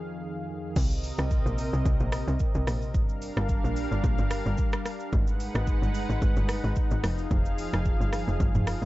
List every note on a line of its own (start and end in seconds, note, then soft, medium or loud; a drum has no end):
0.00 0.74 F2 medium
0.00 0.74 D#3 medium
0.00 0.45 F3 medium
0.00 0.45 D#4 medium
0.00 0.49 G#4 medium
0.00 0.74 G#4 medium
0.00 0.46 F5 medium
0.00 0.74 F5 medium
0.76 1.13 C2 loud
0.76 2.92 C3 medium
0.76 2.92 C4 medium
0.76 2.92 A#4 medium
0.76 2.92 D#5 medium
0.76 kick loud
0.76 crash loud
0.76 shaker medium
0.91 shaker medium
1.04 open hi-hat medium
1.04 shaker medium
1.18 1.42 C2 loud
1.18 cross-stick medium
1.18 shaker medium
1.31 kick medium
1.31 shaker medium
1.46 1.70 A#1 medium
1.46 shaker medium
1.58 open hi-hat medium
1.58 shaker medium
1.73 1.84 C2 medium
1.73 shaker medium
1.85 1.99 C2 loud
1.85 kick loud
1.85 shaker medium
2.00 2.24 A#1 medium
2.00 shaker medium
2.12 cross-stick loud
2.12 open hi-hat medium
2.12 shaker loud
2.28 2.38 C2 loud
2.28 shaker medium
2.39 kick medium
2.39 shaker medium
2.55 2.66 C2 loud
2.55 shaker medium
2.67 2.96 A#1 medium
2.67 cross-stick medium
2.67 open hi-hat medium
2.67 shaker medium
2.82 shaker medium
2.94 3.31 G1 loud
2.94 5.10 G3 medium
2.94 5.10 D4 medium
2.94 5.11 A#4 medium
2.94 5.11 F5 medium
2.94 kick loud
2.94 shaker medium
3.09 shaker medium
3.22 open hi-hat medium
3.22 shaker medium
3.37 3.61 G1 loud
3.37 cross-stick medium
3.37 shaker medium
3.49 kick loud
3.49 shaker medium
3.64 3.88 A#1 medium
3.64 shaker medium
3.76 open hi-hat medium
3.76 shaker medium
3.91 4.02 G1 medium
3.91 shaker medium
4.04 4.17 A#1 loud
4.04 kick loud
4.04 shaker medium
4.18 4.42 G1 loud
4.18 shaker medium
4.31 cross-stick loud
4.31 open hi-hat medium
4.31 shaker loud
4.46 4.57 G1 medium
4.46 shaker medium
4.57 kick medium
4.57 shaker medium
4.73 cross-stick loud
4.73 shaker medium
4.86 cross-stick medium
4.86 open hi-hat medium
4.86 shaker medium
5.00 shaker medium
5.13 5.50 G#1 loud
5.13 7.02 G#3 medium
5.13 8.85 D#4 medium
5.13 7.02 B4 medium
5.13 7.02 F#5 medium
5.13 kick loud
5.13 shaker medium
5.27 shaker medium
5.40 open hi-hat medium
5.40 shaker medium
5.55 5.79 G#1 loud
5.55 cross-stick medium
5.55 shaker medium
5.67 kick medium
5.67 shaker medium
5.82 6.06 G1 medium
5.82 shaker medium
5.95 open hi-hat medium
5.95 shaker medium
6.09 6.20 G#1 medium
6.09 shaker medium
6.22 6.35 G#1 loud
6.22 kick loud
6.22 shaker medium
6.36 6.61 G1 loud
6.36 shaker medium
6.49 cross-stick loud
6.49 open hi-hat medium
6.49 shaker loud
6.64 6.75 G#1 medium
6.64 shaker medium
6.76 kick medium
6.76 shaker medium
6.91 7.02 G#1 medium
6.91 shaker medium
7.04 7.27 F1 loud
7.04 8.85 F3 medium
7.04 8.85 G#4 medium
7.04 8.85 F5 medium
7.04 cross-stick loud
7.04 open hi-hat medium
7.04 shaker medium
7.18 shaker medium
7.31 7.68 F1 loud
7.31 kick loud
7.31 shaker medium
7.46 shaker medium
7.58 open hi-hat medium
7.58 shaker medium
7.73 7.97 F1 loud
7.73 cross-stick medium
7.73 shaker medium
7.85 kick medium
7.85 shaker medium
8.00 8.24 G1 medium
8.00 shaker medium
8.13 cross-stick medium
8.13 open hi-hat medium
8.13 shaker medium
8.28 8.38 F1 medium
8.28 shaker medium
8.40 8.53 G1 loud
8.40 kick loud
8.40 shaker medium
8.55 8.79 F1 medium
8.55 mid tom loud
8.55 shaker medium
8.67 cross-stick loud
8.67 open hi-hat medium
8.67 shaker loud
8.82 8.85 F1 medium